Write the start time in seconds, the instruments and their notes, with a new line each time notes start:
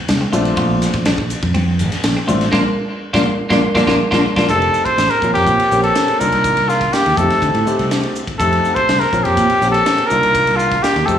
0.08 fingered electric bass C2, snare, ride, high conga
0.21 clean electric guitar C4
0.32 fingered electric bass A#1, grand piano A3 C4 D4 F4, clean electric guitar F4, hi-hat pedal, ride
0.45 ride
0.57 fingered electric bass A#1, clean electric guitar F4, kick, ride, muted conga
0.81 snare, hi-hat pedal, ride, muted conga
0.93 fingered electric bass A#1, kick, snare, ride
1.05 clean electric guitar D4, snare, ride, high conga
1.18 fingered electric bass A#1, kick
1.30 hi-hat pedal, ride
1.43 fingered electric bass F2, kick, ride
1.54 clean electric guitar C4, ride, muted conga, high conga
1.79 fingered electric bass A1, hi-hat pedal, ride
1.92 snare, ride
2.04 fingered electric bass A#1, snare, ride
2.17 clean electric guitar C4
2.27 fingered electric bass A1, grand piano A3 C4 D4 F4, clean electric guitar F4, hi-hat pedal, ride, muted conga, high conga
2.41 snare, ride
2.52 fingered electric bass A#1, clean electric guitar A#3 D4 F4, grand piano A#3 D4 F4, kick, snare, high conga
3.13 fingered electric bass A#1, clean electric guitar A#3 D4 F4, grand piano A#3 D4 F4, kick, snare, high conga
3.50 fingered electric bass A#1, clean electric guitar A#3 D4 F4, grand piano A#3 D4 F4, kick, snare, high conga
3.75 fingered electric bass A#1, clean electric guitar A#3 D4 F4, grand piano A#3 D4 F4, kick, snare, high conga
3.87 fingered electric bass A#1, clean electric guitar A#3 D4 F4, grand piano A#3 D4 F4, kick, snare, high conga
4.11 fingered electric bass A#1, clean electric guitar A#3 D4 F4, grand piano A#3 D4 F4, kick, snare, high conga
4.36 fingered electric bass A#1, clean electric guitar A#3 D4 F4, grand piano A#3 D4 F4, kick, snare, high conga
4.49 fingered electric bass F1, grand piano A3 C4 D#4 G4, trumpet A4, kick, hi-hat pedal, ride
4.62 ride
4.74 hi-hat pedal
4.85 trumpet C5, kick, ride
4.98 fingered electric bass A1, snare, hi-hat pedal, ride
5.10 trumpet A#4, ride
5.22 fingered electric bass A#1, grand piano A#3 C4 C#4 F4, kick, hi-hat pedal
5.34 fingered electric bass F2, trumpet G4, snare, ride
5.47 fingered electric bass A#2, kick, hi-hat pedal, ride
5.60 ride
5.71 fingered electric bass A#1, grand piano A#3 C4 C#4 G4, hi-hat pedal
5.83 trumpet A4, ride
5.95 snare, hi-hat pedal, ride
6.08 muted fingered electric bass stroke, ride
6.19 fingered electric bass C2, grand piano A#3 D4 D#4 F4, trumpet A#4, hi-hat pedal
6.32 fingered electric bass C2, ride
6.44 kick, hi-hat pedal, ride
6.57 fingered electric bass C2, ride
6.69 trumpet F4, snare, hi-hat pedal
6.81 kick, snare, ride
6.93 trumpet G4, muted fingered electric bass stroke, snare, hi-hat pedal, ride
7.06 fingered electric bass D#2, snare, ride
7.17 fingered electric bass F2, grand piano A3 C4 D#4 G4, trumpet A4, kick, hi-hat pedal
7.30 snare, ride
7.42 fingered electric bass D3, kick, hi-hat pedal, ride
7.54 fingered electric bass A2, ride
7.66 grand piano A3 C4 D#4 G4, muted fingered electric bass stroke, hi-hat pedal
7.79 fingered electric bass C2, ride
7.91 snare, hi-hat pedal, ride
8.03 ride
8.15 hi-hat pedal
8.27 muted fingered electric bass stroke, kick, ride
8.39 fingered electric bass F2, grand piano A3 C4 D#4 G4, trumpet A4, kick, hi-hat pedal, ride
8.53 ride
8.65 hi-hat pedal
8.75 trumpet C5, kick, ride
8.89 fingered electric bass C2, snare, hi-hat pedal, ride
8.99 trumpet A#4, snare, ride
9.12 fingered electric bass A#1, grand piano A#3 C4 C#4 F4, kick, hi-hat pedal
9.24 fingered electric bass F2, trumpet G4, ride
9.37 fingered electric bass A#2, kick, hi-hat pedal, ride
9.50 ride
9.61 fingered electric bass A#1, grand piano A#3 C4 C#4 G4, hi-hat pedal
9.71 trumpet A4, ride
9.86 snare, hi-hat pedal, ride
9.98 muted fingered electric bass stroke, ride
10.06 grand piano A#3 D4, trumpet A#4, hi-hat pedal
10.11 fingered electric bass C2, grand piano D#4 F4
10.23 fingered electric bass C2, ride
10.35 kick, hi-hat pedal, ride
10.47 fingered electric bass C2, ride
10.56 trumpet F4, hi-hat pedal
10.72 kick, snare, ride
10.83 trumpet G4, muted fingered electric bass stroke, snare, hi-hat pedal, ride
10.96 fingered electric bass D#2, snare, ride
11.06 fingered electric bass F2, grand piano A3 C4 D#4 G4, trumpet A4, kick, hi-hat pedal